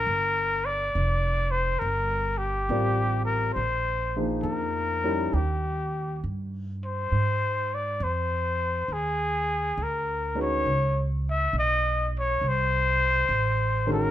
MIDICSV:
0, 0, Header, 1, 4, 480
1, 0, Start_track
1, 0, Tempo, 877193
1, 28, Time_signature, 4, 2, 24, 8
1, 1948, Tempo, 887574
1, 5308, Tempo, 875912
1, 7684, End_track
2, 0, Start_track
2, 0, Title_t, "Muted trumpet"
2, 0, Program_c, 0, 59
2, 0, Note_on_c, 0, 70, 86
2, 357, Note_on_c, 0, 74, 85
2, 365, Note_off_c, 0, 70, 0
2, 826, Note_on_c, 0, 72, 77
2, 835, Note_off_c, 0, 74, 0
2, 980, Note_on_c, 0, 70, 77
2, 989, Note_off_c, 0, 72, 0
2, 1301, Note_on_c, 0, 67, 76
2, 1309, Note_off_c, 0, 70, 0
2, 1777, Note_off_c, 0, 67, 0
2, 1781, Note_on_c, 0, 70, 72
2, 1931, Note_off_c, 0, 70, 0
2, 1934, Note_on_c, 0, 72, 79
2, 2299, Note_off_c, 0, 72, 0
2, 2421, Note_on_c, 0, 70, 79
2, 2910, Note_on_c, 0, 67, 61
2, 2918, Note_off_c, 0, 70, 0
2, 3391, Note_off_c, 0, 67, 0
2, 3729, Note_on_c, 0, 72, 80
2, 4211, Note_on_c, 0, 74, 69
2, 4219, Note_off_c, 0, 72, 0
2, 4369, Note_on_c, 0, 72, 76
2, 4377, Note_off_c, 0, 74, 0
2, 4852, Note_on_c, 0, 68, 76
2, 4860, Note_off_c, 0, 72, 0
2, 5339, Note_on_c, 0, 70, 71
2, 5348, Note_off_c, 0, 68, 0
2, 5646, Note_off_c, 0, 70, 0
2, 5660, Note_on_c, 0, 73, 80
2, 6016, Note_off_c, 0, 73, 0
2, 6144, Note_on_c, 0, 76, 82
2, 6279, Note_off_c, 0, 76, 0
2, 6304, Note_on_c, 0, 75, 91
2, 6588, Note_off_c, 0, 75, 0
2, 6632, Note_on_c, 0, 73, 78
2, 6792, Note_on_c, 0, 72, 88
2, 6800, Note_off_c, 0, 73, 0
2, 7566, Note_off_c, 0, 72, 0
2, 7587, Note_on_c, 0, 70, 83
2, 7684, Note_off_c, 0, 70, 0
2, 7684, End_track
3, 0, Start_track
3, 0, Title_t, "Grand piano"
3, 0, Program_c, 1, 0
3, 0, Control_c, 1, 64, 127
3, 36, Control_c, 1, 64, 0
3, 141, Control_c, 1, 64, 127
3, 1474, Note_on_c, 1, 55, 46
3, 1475, Note_on_c, 1, 60, 42
3, 1478, Note_on_c, 1, 65, 41
3, 1480, Note_on_c, 1, 70, 42
3, 1483, Note_on_c, 1, 74, 50
3, 1951, Note_off_c, 1, 55, 0
3, 1952, Note_off_c, 1, 60, 0
3, 1953, Note_off_c, 1, 65, 0
3, 1954, Note_off_c, 1, 70, 0
3, 1954, Control_c, 1, 64, 0
3, 1956, Note_off_c, 1, 74, 0
3, 2058, Control_c, 1, 64, 127
3, 2273, Note_on_c, 1, 53, 49
3, 2274, Note_on_c, 1, 63, 49
3, 2275, Note_on_c, 1, 68, 46
3, 2277, Note_on_c, 1, 58, 47
3, 2278, Note_on_c, 1, 72, 59
3, 2413, Note_off_c, 1, 53, 0
3, 2413, Note_off_c, 1, 63, 0
3, 2414, Note_off_c, 1, 68, 0
3, 2415, Note_off_c, 1, 58, 0
3, 2416, Note_off_c, 1, 72, 0
3, 2748, Note_on_c, 1, 55, 54
3, 2749, Note_on_c, 1, 61, 46
3, 2754, Note_on_c, 1, 63, 46
3, 2754, Note_on_c, 1, 64, 44
3, 2757, Note_on_c, 1, 70, 57
3, 2891, Note_off_c, 1, 55, 0
3, 2891, Note_off_c, 1, 61, 0
3, 2893, Note_off_c, 1, 64, 0
3, 2894, Note_off_c, 1, 63, 0
3, 2895, Note_off_c, 1, 70, 0
3, 2912, Control_c, 1, 64, 0
3, 3002, Control_c, 1, 64, 127
3, 3878, Control_c, 1, 64, 0
3, 3964, Control_c, 1, 64, 127
3, 5624, Note_on_c, 1, 56, 43
3, 5626, Note_on_c, 1, 63, 50
3, 5627, Note_on_c, 1, 66, 44
3, 5628, Note_on_c, 1, 61, 48
3, 5632, Note_on_c, 1, 71, 56
3, 5772, Note_off_c, 1, 56, 0
3, 5773, Note_off_c, 1, 63, 0
3, 5774, Note_off_c, 1, 61, 0
3, 5774, Note_off_c, 1, 66, 0
3, 5776, Note_off_c, 1, 71, 0
3, 5800, Control_c, 1, 64, 0
3, 5905, Control_c, 1, 64, 127
3, 6760, Control_c, 1, 64, 0
3, 6845, Control_c, 1, 64, 127
3, 7550, Note_on_c, 1, 61, 49
3, 7553, Note_on_c, 1, 51, 56
3, 7554, Note_on_c, 1, 56, 49
3, 7554, Note_on_c, 1, 66, 49
3, 7554, Note_on_c, 1, 70, 64
3, 7684, Note_off_c, 1, 51, 0
3, 7684, Note_off_c, 1, 56, 0
3, 7684, Note_off_c, 1, 61, 0
3, 7684, Note_off_c, 1, 66, 0
3, 7684, Note_off_c, 1, 70, 0
3, 7684, End_track
4, 0, Start_track
4, 0, Title_t, "Upright bass"
4, 0, Program_c, 2, 32
4, 36, Note_on_c, 2, 31, 68
4, 498, Note_off_c, 2, 31, 0
4, 521, Note_on_c, 2, 29, 70
4, 979, Note_off_c, 2, 29, 0
4, 994, Note_on_c, 2, 31, 68
4, 1455, Note_off_c, 2, 31, 0
4, 1472, Note_on_c, 2, 33, 71
4, 1936, Note_off_c, 2, 33, 0
4, 1948, Note_on_c, 2, 34, 64
4, 2411, Note_off_c, 2, 34, 0
4, 2420, Note_on_c, 2, 41, 74
4, 2888, Note_off_c, 2, 41, 0
4, 2906, Note_on_c, 2, 39, 65
4, 3374, Note_off_c, 2, 39, 0
4, 3395, Note_on_c, 2, 43, 65
4, 3861, Note_off_c, 2, 43, 0
4, 3872, Note_on_c, 2, 44, 63
4, 4337, Note_off_c, 2, 44, 0
4, 4351, Note_on_c, 2, 41, 75
4, 4816, Note_off_c, 2, 41, 0
4, 4827, Note_on_c, 2, 39, 66
4, 5292, Note_off_c, 2, 39, 0
4, 5309, Note_on_c, 2, 38, 72
4, 5777, Note_off_c, 2, 38, 0
4, 5793, Note_on_c, 2, 37, 65
4, 6260, Note_off_c, 2, 37, 0
4, 6272, Note_on_c, 2, 35, 71
4, 6738, Note_off_c, 2, 35, 0
4, 6756, Note_on_c, 2, 36, 64
4, 7216, Note_off_c, 2, 36, 0
4, 7234, Note_on_c, 2, 33, 70
4, 7684, Note_off_c, 2, 33, 0
4, 7684, End_track
0, 0, End_of_file